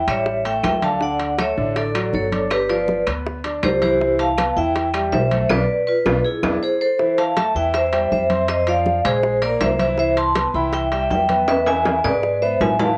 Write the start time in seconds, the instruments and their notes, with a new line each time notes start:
0.07 upright bass A1, grand piano G3 G4, vibraphone C#5 E5, high bongo, high conga, high timbale, claves
0.26 high bongo, high conga
0.45 grand piano A3 A4, vibraphone E5 G5, high bongo, high conga, high timbale
0.64 upright bass D2, vibraphone E5 G5, high bongo, low bongo, high conga, high timbale, low timbale, claves
0.82 grand piano D3 D4, vibraphone F5 A5, high conga, high timbale
1.01 grand piano D3 D4, vibraphone D5 F#5, high bongo
1.20 high bongo, high conga, high timbale
1.38 grand piano A3 A4, vibraphone C#5 E5, high bongo, high conga, high timbale, claves
1.57 upright bass A1, grand piano D3 D4, high bongo, high conga
1.76 vibraphone A4 D5, high bongo, high conga, high timbale
1.95 grand piano F#3 F#4, high bongo, high conga, high timbale, claves
2.13 upright bass G1, vibraphone A4 C#5, high bongo, low bongo, high conga
2.32 grand piano D4 D5, high conga, high timbale
2.51 vibraphone G4 B4, high bongo, high timbale, claves
2.69 grand piano F3 F4, vibraphone B4 D5, high bongo, high conga, high timbale
2.88 high bongo, high conga
3.07 upright bass D2, grand piano B3 B4, high bongo, high conga, high timbale, claves
3.26 high bongo, high conga
3.44 grand piano D4 D5, high bongo, high conga, high timbale
3.63 upright bass C2, vibraphone G4 C5, high bongo, low bongo, high conga, high timbale, low timbale, claves
3.82 grand piano E3 E4, vibraphone G4 C5, high conga, high timbale
4.00 grand piano E3 E4, high bongo, high conga
4.19 vibraphone F5 A5, high bongo, high conga, high timbale
4.38 grand piano B3 B4, high bongo, high conga, high timbale, claves
4.56 upright bass E2, grand piano E3 E4, vibraphone E5 G5, high bongo, high conga
4.75 high bongo, high conga, high timbale
4.94 grand piano G3 G4, high bongo, high conga, high timbale, claves
5.12 upright bass B1, vibraphone C5 E5, high bongo, low bongo, high conga, low timbale
5.31 grand piano A3 A4, high conga, high timbale
5.49 upright bass B1, grand piano B3 D4 F4, vibraphone B4 D5, high bongo, high conga, high timbale, claves
5.87 vibraphone F4 B4
6.05 upright bass B1, grand piano B3 D4 F4, high bongo, high conga, high timbale, claves
6.24 vibraphone E4 G#4
6.43 upright bass E2, grand piano B3 D4 E4, high bongo, high conga, high timbale, claves
6.63 vibraphone G#4 C5
6.81 vibraphone A4 C5
6.99 grand piano E3 E4 E5, high bongo, high conga
7.18 vibraphone F5 A5, high bongo, high conga, high timbale
7.37 grand piano A3 A4 A5, vibraphone E5 A5, high bongo, high conga, high timbale
7.55 upright bass E2, grand piano E3 E4 E5, vibraphone E5 G5, high bongo, high conga
7.74 vibraphone C5 E5, high bongo, high conga, high timbale
7.93 grand piano G3 G4 G5, high bongo, high conga, high timbale
8.11 upright bass F2, vibraphone C5 E5, high bongo, low bongo, high conga
8.30 grand piano C4 C5 C6, high conga, high timbale
8.48 vibraphone C5 D#5, high bongo, high conga, high timbale
8.67 grand piano F3 F4 F5, vibraphone D5 F5, high bongo, high conga, high timbale
8.86 high bongo, high conga
9.05 upright bass A#1, grand piano G#3 G#4 G#5, vibraphone G#4 C5, high bongo, high conga, low conga, high timbale
9.23 high bongo, high conga
9.42 grand piano A#3 A#4 A#5, vibraphone A#4 D5, high bongo, high conga, high timbale
9.61 upright bass C2, vibraphone C5 E5, high bongo, low bongo, high conga, high timbale, low timbale
9.79 grand piano E3 E4 E5, vibraphone C5 E5, high conga, high timbale
9.98 grand piano E3 E4 E5, vibraphone C5 E5, high bongo
10.17 vibraphone A5 C6, high bongo, high conga, high timbale
10.35 grand piano B3 B4 B5, high bongo, high conga, high timbale
10.54 upright bass C2, grand piano E3 E4 E5, vibraphone G5 B5, high bongo, high conga
10.73 vibraphone E5 G5, high bongo, high conga, high timbale
10.92 grand piano G3 G4 G5, vibraphone E5 G5, high bongo, high conga, high timbale
11.10 upright bass E2, vibraphone E5 G5, high bongo, low bongo, high conga, low timbale
11.29 grand piano B3 B4 B5, high conga, high timbale
11.48 vibraphone B4 E5, high bongo, high timbale
11.66 grand piano E3 E4 E5, vibraphone E5 G#5, high bongo, high conga, high timbale
11.85 high bongo, high conga, high timbale
12.04 upright bass G#2, grand piano G#3 G#4 G#5, vibraphone B4 D5, high bongo, high conga, low conga, high timbale
12.23 high bongo, high conga
12.42 grand piano B3 B4 B5, vibraphone C5 E5, high bongo, high conga
12.60 upright bass A2, vibraphone E5 G#5, high bongo, low bongo, high conga, low timbale
12.79 grand piano E3 E4 E5, vibraphone F5 A5, high conga, low timbale